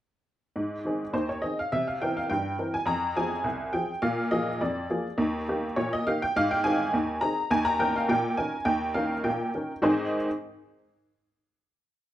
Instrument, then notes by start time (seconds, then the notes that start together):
honky-tonk piano
0.56 G#2
0.85 D#3 C4 G#4
1.13 D#2 C5
1.29 C#5
1.42 D#3 C4 G#4 D#5
1.59 F5
1.72 C3 E5
1.87 F5
2.01 E3 C4 A#4 G5
2.17 F5
2.30 G2 G5
2.59 E3 C4 A#4
2.74 G#5
2.86 F2 A#5
3.16 F3 C4 G#4 G#5
3.44 C2
3.73 F3 C4 G#4 G5
4.02 A#2 F5
4.31 F3 A#3 G#4 D#5
4.61 F2 D5
4.90 F3 A#3 G#4
5.18 D#2
5.49 D#3 A#3 G4
5.76 A#2 C#5
5.93 D#5
6.07 D#3 A#3 G4 F5
6.22 G5
6.36 G#2 F5
6.51 G5
6.64 D#3 C4 G#4 G#5
6.93 D#2
7.21 D#3 C4 G#4 A#5
7.51 D#2 G#5
7.65 A#5
7.80 D#3 C#4 A#4 G5
7.96 F5
8.09 A#2 G5
8.37 D#3 C#4 A#4 G#5
8.65 D#2 G5
8.94 D#3 C#4 A#4 F5
9.24 A#2 G5
9.54 D#3 C#4 A#4
9.82 G#2 D#3 C4 D#4 G#4 C5 C6